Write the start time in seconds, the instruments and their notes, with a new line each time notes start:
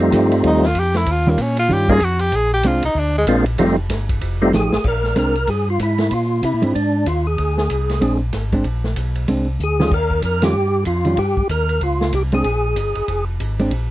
Already playing: tonewheel organ F2 G3 A3 C4 D#4 F4
0.12 tonewheel organ G2, hollow-body jazz guitar F3 A3 D#4 G4, kick, hi-hat pedal, ride
0.32 ride
0.44 tonewheel organ D#2, tenor saxophone D#4, kick, ride
0.63 tenor saxophone F4, snare
0.75 tonewheel organ F2, kick, hi-hat pedal, ride
0.79 tenor saxophone G4
0.94 tenor saxophone E4, snare, ride
1.06 tonewheel organ D#2, kick, ride
1.11 tenor saxophone F4
1.27 hollow-body jazz guitar D#3 G3 C#4 F4, tenor saxophone A#3
1.38 tonewheel organ A#2, tenor saxophone C#4, kick, hi-hat pedal, ride
1.57 tenor saxophone F4, ride
1.69 tonewheel organ G2, hollow-body jazz guitar D#3 G3 C#4 F4, kick
1.73 tenor saxophone G4
1.89 tonewheel organ G3 A#3 C#4 D#4 F4, tenor saxophone G#4, kick
2.00 tonewheel organ F2, tenor saxophone F#4, kick, hi-hat pedal, ride
2.19 tenor saxophone G4, ride
2.32 tonewheel organ A#1, tenor saxophone G#4, kick, ride
2.54 tenor saxophone G4
2.63 tonewheel organ C2, hollow-body jazz guitar G#3 C4 D4, tenor saxophone F4, kick, hi-hat pedal, ride
2.83 tonewheel organ C2, tenor saxophone D#4, ride
2.95 tonewheel organ D2, tenor saxophone D4, kick
3.18 tenor saxophone G#3
3.27 tonewheel organ A#1 G#3 A#3 C4 D4 F4, kick, hi-hat pedal, ride
3.46 ride
3.58 tonewheel organ F1 G3 A3 C4 D#4 F4, hollow-body jazz guitar F3 A3 D#4 G4, kick, ride
3.90 tonewheel organ G1, kick, snare, hi-hat pedal, ride
4.09 kick, ride
4.21 tonewheel organ F1, kick, ride
4.42 tonewheel organ G3 A3 C4 D#4 F4
4.53 tonewheel organ A1 G#4, hollow-body jazz guitar F3 A3 D#4 G4, snare, hi-hat pedal
4.72 tonewheel organ A1, snare
4.84 tonewheel organ A#1 A#4, kick, crash
5.04 snare
5.16 tonewheel organ C2 A#4, hollow-body jazz guitar G#3 C4 D4, kick, hi-hat pedal, ride
5.35 ride
5.47 tonewheel organ G2 G#4, kick, ride
5.70 tonewheel organ F4
5.79 tonewheel organ G#2 E4, kick, hi-hat pedal, ride
5.98 snare, ride
6.11 tonewheel organ A#2 F4, kick, ride
6.43 tonewheel organ C3 E4, kick, hi-hat pedal, ride
6.54 tonewheel organ A#2
6.62 tonewheel organ G#2, hollow-body jazz guitar G#3 C4 D4, ride
6.75 tonewheel organ G#2 D4, kick, ride
7.06 tonewheel organ D#2 F4, kick, hi-hat pedal, ride
7.27 tonewheel organ G#4
7.38 tonewheel organ D2, kick, ride
7.58 snare
7.70 tonewheel organ C2, kick, hi-hat pedal, ride
7.89 snare, ride
8.01 tonewheel organ A#1, hollow-body jazz guitar G#3 C4 D4, kick, ride
8.33 tonewheel organ G#1, kick, snare, hi-hat pedal, ride
8.52 hollow-body jazz guitar G#3 C4 D4, kick, ride
8.64 tonewheel organ A#1, kick, ride
8.84 snare
8.96 tonewheel organ B1, kick, hi-hat pedal, ride
9.15 ride
9.28 tonewheel organ C2, hollow-body jazz guitar G#3 C4 D4, kick, ride
9.60 tonewheel organ D2 G#4, hi-hat pedal
9.80 hollow-body jazz guitar D#3 G3 C#4 F4, snare
9.91 tonewheel organ D#2 A#4, kick, crash
10.11 kick
10.22 tonewheel organ F2 A#4, kick, hi-hat pedal, ride
10.42 hollow-body jazz guitar D#3 G3 C#4 F4, tonewheel organ G4, snare, ride
10.54 tonewheel organ G2
10.85 tonewheel organ F2 F4, kick, hi-hat pedal, ride
11.05 hollow-body jazz guitar D#3 G3 C#4 F4, ride
11.17 tonewheel organ G2 G4, kick, ride
11.37 tonewheel organ G2, kick
11.49 tonewheel organ D#2 A#4, kick, hi-hat pedal, ride
11.69 ride
11.81 tonewheel organ C#2 F4, kick, ride
12.01 snare
12.13 tonewheel organ C2 G4, kick, hi-hat pedal, ride
12.32 hollow-body jazz guitar G#3 C4 D4, tonewheel organ G#4, ride
12.44 tonewheel organ A#1, kick, ride
12.76 tonewheel organ G1, kick, hi-hat pedal, ride
12.95 tonewheel organ G1, ride
13.08 tonewheel organ F1, kick, ride
13.40 tonewheel organ G#1, kick, hi-hat pedal, ride
13.59 hollow-body jazz guitar G#3 C4 D4, ride
13.71 tonewheel organ A#1, kick, ride